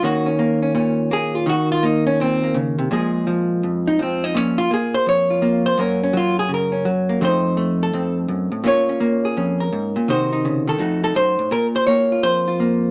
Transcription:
0.03 D#3 A#3 C#4 F#4
0.26 C#4
0.39 A#3
0.62 C#4
0.75 A#2 C#4
1.11 A#3 G#4
1.35 F4
1.46 D#3 F#4
1.72 F4
1.83 A#3 D#4
2.07 C#4
2.20 A#2 C4
2.44 A#3
2.54 C#3
2.79 C3
2.91 A#2 F3 G#3 G#4
3.27 F3
3.63 F2
3.88 D#4
3.99 F3 C4
4.24 D#4
4.35 A#2 C#4
4.58 F4
4.71 A#3 G#4
4.94 C5
5.06 F2 C#5
5.30 F4
5.42 A#3 F4
5.66 C5
5.78 F#2 F#3 A#3 C#4 A#4
6.03 C#4
6.13 F#3 F4
6.39 G#4
6.48 C#3
6.54 A#4
6.72 C#4
6.85 F#3
7.09 A#3
7.21 F2 A3 C4 D#4 C5
7.57 A3
7.83 A4
7.93 F2 C4
8.28 F#2
8.52 A2
8.64 A#2 A#3 C#4 F4 C#5
8.89 C#4
9.00 A#3
9.25 G#4
9.37 F2 C#4
9.60 A#4
9.73 G#2
9.96 A#2
10.08 C3 D#3 D#4 F#4 C5
10.33 D#4
10.45 C#3
10.68 D#3 A4
10.78 F2 A3 D#4 F#4
11.03 D#4 A4
11.15 F#2 C5
11.39 A2
11.51 A#2 A#4
11.76 C5
11.87 A#3 C#5
12.12 F4
12.23 F2 C5
12.48 F4
12.60 A#3

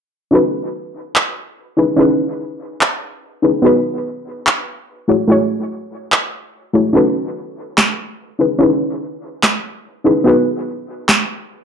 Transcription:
0.31 C#4 D#4 F#4 A4
0.35 B4
1.16 clap
1.77 C#4 D#4 E4 G#4 B4
1.96 C#4 D#4 E4 G#4 B4
2.81 clap
3.42 C#4 D#4 E4 G#4 B4
3.62 B3 D#4 F#4 G#4
3.66 B4
4.47 clap
5.08 A3 E4 F#4 G#4 C#5
5.28 A3 E4 F#4 G#4
5.32 C#5
6.12 clap
6.73 A3 E4 F#4 G#4 C#5
6.93 C#4 D#4 F#4 A4
6.97 B4
7.78 snare, clap
8.39 C#4 D#4 E4 G#4 B4
8.59 C#4 D#4 E4 G#4
8.63 B4
9.43 snare, clap
10.04 C#4 D#4 E4 G#4 B4
10.24 B3 D#4 F#4 G#4
10.28 B4
11.09 snare, clap

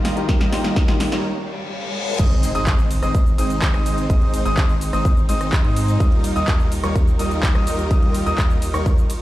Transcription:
Already playing: D#2 D#3 G3 A#3 D#4 F4 G4 A#4 C5 D#5 F5, riser
0.05 snare, open hi-hat
0.16 D#3 A#3 D#4 F4 G4, closed hi-hat
0.29 G3 D#4 F4 A#4 D#5 G5, kick, snare, closed hi-hat
0.41 snare, closed hi-hat
0.52 D#3 A#3 D#4 F4 G4, snare, open hi-hat
0.64 G3 D#4 F4 A#4 D#5, snare, closed hi-hat
0.76 kick, snare, closed hi-hat
0.88 D#3 A#3 D#4 F4 G4, snare, closed hi-hat
1.00 snare, open hi-hat
1.12 G3 D#4 F4 A#4 C#5, snare, closed hi-hat
1.24 reverse cymbal
2.19 G#1 G#3 C4 D#4 C5 D#5 D#6, kick, closed hi-hat, crash, ride, impact, shaker
2.31 closed hi-hat
2.43 open hi-hat, ride, shaker
2.55 G#1 G#3 C4 D#4 C5 D#5 D#6, closed hi-hat, shaker
2.67 kick, clap, closed hi-hat, ride, shaker
2.79 closed hi-hat, shaker
2.91 open hi-hat, ride, shaker
3.03 G#1 G#3 C4 D#4 C5 D#5 D#6, cross-stick, closed hi-hat, shaker
3.14 kick, closed hi-hat, ride, shaker
3.26 closed hi-hat, shaker
3.38 G#1 G#3 C4 D#4 C5 D#5 D#6, open hi-hat, ride, shaker
3.50 closed hi-hat, shaker
3.62 kick, clap, closed hi-hat, ride, shaker
3.74 G#1 G#3 C4 D#4 C5 D#5 D#6, cross-stick, closed hi-hat
3.86 open hi-hat, ride, shaker
3.98 closed hi-hat, shaker
4.10 G#1 G#3 C4 D#4 C5 D#5 D#6, kick, closed hi-hat, ride, shaker
4.22 closed hi-hat
4.34 open hi-hat, ride, shaker
4.45 G#1 G#3 C4 D#4 C5 D#5 D#6, closed hi-hat, shaker
4.57 kick, clap, closed hi-hat, ride, shaker
4.69 closed hi-hat, shaker
4.81 open hi-hat, ride, shaker
4.93 G#1 G#3 C4 D#4 C5 D#5 D#6, cross-stick, closed hi-hat, shaker
5.05 kick, closed hi-hat, ride, shaker
5.17 closed hi-hat, shaker
5.29 G#1 G#3 C4 D#4 C5 D#5 D#6, open hi-hat, ride, shaker
5.41 cross-stick, closed hi-hat, shaker
5.53 kick, clap, closed hi-hat, ride, shaker
5.64 G#2 G#3 C4 D#4 C5 D#5 D#6, closed hi-hat
5.76 open hi-hat, ride, shaker
5.88 closed hi-hat, shaker
6.00 D#2 D#3 G3 D#4 F4 G4 A#4 D#5 D#6, kick, closed hi-hat, ride, shaker
6.12 closed hi-hat
6.24 open hi-hat, ride, shaker
6.36 D#2 G3 D#4 F4 A#4 D#5 D#6, closed hi-hat, shaker
6.48 kick, clap, closed hi-hat, ride, shaker
6.60 closed hi-hat, shaker
6.72 open hi-hat, ride, shaker
6.84 D#2 G3 D#4 F4 A#4 C#5 C#6, cross-stick, closed hi-hat, shaker
6.95 kick, closed hi-hat, ride, shaker
7.07 closed hi-hat, shaker
7.19 D#2 G3 D#4 F4 A#4 D#5 D#6, open hi-hat, ride, shaker
7.31 closed hi-hat, shaker
7.43 kick, clap, closed hi-hat, ride, shaker
7.55 D#2 G3 D#4 F4 A#4 D#5 D#6, cross-stick, closed hi-hat
7.67 open hi-hat, ride, shaker
7.79 closed hi-hat, shaker
7.91 D#2 G3 D#4 F4 A#4 D#5 D#6, kick, closed hi-hat, ride, shaker
8.03 closed hi-hat
8.14 open hi-hat, ride, shaker
8.26 D#2 G3 D#4 F4 A#4 D#5 D#6, closed hi-hat, shaker
8.38 kick, clap, closed hi-hat, ride, shaker
8.50 closed hi-hat, shaker
8.62 open hi-hat, ride, shaker
8.74 D#2 G3 D#4 F4 A#4 C#5 C#6, cross-stick, closed hi-hat, shaker
8.86 kick, closed hi-hat, ride, shaker
8.98 closed hi-hat, shaker
9.10 open hi-hat, ride, shaker

